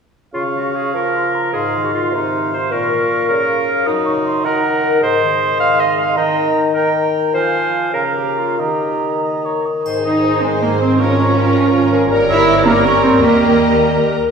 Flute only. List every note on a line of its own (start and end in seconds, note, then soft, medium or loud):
0.34 0.90 C#6 soft
0.94 1.00 C#6 soft
1.14 1.36 C6 soft
1.35 1.57 A#5 soft
1.56 2.12 C6 soft
2.13 2.73 C6 soft
2.72 3.61 C#6 medium
3.86 3.92 D#6 medium
4.06 4.12 C#6 medium
4.25 4.46 C6 medium
4.44 5.02 A#5 medium
5.02 6.18 C6 medium
6.17 6.74 A#5 medium
6.76 7.33 A#5 soft
7.36 7.96 G#5 medium
7.95 8.58 A#5 soft
8.59 9.64 A#5 soft
10.05 10.41 D#6 soft
10.44 10.64 G#5 soft
10.63 10.80 A#5 soft
10.80 11.00 C6 soft
10.99 11.92 C#6 medium
12.29 12.63 E6 medium
12.65 12.71 A#5 medium
12.85 13.04 C#6 medium
13.03 13.22 C6 medium
13.23 13.80 A#5 medium